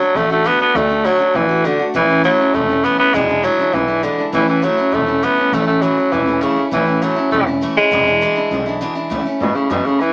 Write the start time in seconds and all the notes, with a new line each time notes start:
Already playing: F#3
0.00 A3 D4 F#4, muted upright bass stroke
0.15 A1 D3 A3 D4 F#4
0.30 A3 D4 F#4
0.44 D3 A3 B3 D4 F#4
0.59 A3 B3 D4 F#4, muted upright bass stroke
0.75 D2 D3 A3 D4 F#4
0.89 A3 D4 F#4
1.04 D3 F#3 A3 D4 F#4
1.19 A3 D4 F#4, muted upright bass stroke
1.33 A1 D3 E3 A3 D4 F#4
1.49 A3 D4 F#4
1.64 D3 A3 D4 F#4
1.79 A3 D4 F#4, muted upright bass stroke
1.94 A1 A2 E3 A3 C#4 E4
2.08 A3 C#4 E4
2.24 A2 E3 F#3 A3 C#4 E4
2.39 A3 C#4 E4, muted upright bass stroke
2.54 E1 E3 A3 C#4 E4
2.69 A3 C#4 E4
2.84 A2 E3 A3 B3 C#4 E4
2.98 A3 B3 C#4 E4, muted upright bass stroke
3.14 E1 E2 B2 E3 G#3 D4 E4
3.29 E3 G#3 D4 E4
3.43 E2 B2 E3 F#3 G#3 D4 E4
3.59 E3 G#3 D4 E4, muted upright bass stroke
3.73 B1 E3 G#3 D4 E4
3.87 E3 G#3 D4 E4
4.03 E2 B2 D3 E3 G#3 D4 E4
4.18 E3 G#3 D4 E4, muted upright bass stroke
4.32 A1 A2 E3 A3 C#4 E4
4.48 E3 A3 C#4 E4
4.62 A2 E3 F#3 A3 C#4 E4
4.77 A3 C#4 E4, muted upright bass stroke
4.92 E1 E3 A3 C#4 E4
5.06 A3 C#4 E4
5.22 A2 E3 A3 B3 C#4 E4
5.37 A3 C#4 E4, muted upright bass stroke
5.52 A1 A2 E3 A3 C#4 E4
5.67 A3 C#4 E4
5.82 A2 E3 F#3 A3 C#4 E4
5.97 C#4 E4, muted upright bass stroke
6.12 E1 E3 A3 C#4 E4
6.26 A3 C#4 E4
6.41 A2 C#3 E3 A3 C#4 E4
6.56 A3 C#4 E4, muted upright bass stroke
6.71 A1 A2 E3 A3 C#4 E4
6.86 A3 C#4 E4
7.02 A2 E3 F#3 A3 C#4 E4
7.16 A3 C#4 E4, muted upright bass stroke
7.31 E1 E3 A3 C#4 E4
7.46 A3 C#4 E4
7.61 A2 E3 A3 C#4 E4
7.76 G#3 A3 C#4 E4, muted upright bass stroke
7.91 E1 E2 B2 E3 G#3 D4 E4
8.06 E3 G#3 D4 E4
8.21 E2 B2 E3 G#3 D4 E4
8.36 E3 G#3 D4 E4, muted upright bass stroke
8.51 B1 E3 G#3 D4 E4
8.66 E3 G#3 D4 E4
8.81 E2 B2 E3 G#3 D4 E4
8.95 E3 G#3 D4 E4, muted upright bass stroke
9.10 C#2 A2 E3 A3 C#4 E4
9.26 A3 C#4 E4, muted upright bass stroke
9.40 G#2 B2 E3 A3 C#4 E4
9.55 C#3 A3 C#4 E4, muted upright bass stroke
9.70 F#2 A2 B2 E3 A3 C#4 E4
9.84 C#3 A3 C#4 E4, muted upright bass stroke
10.00 E2 E3 A3 C#4 E4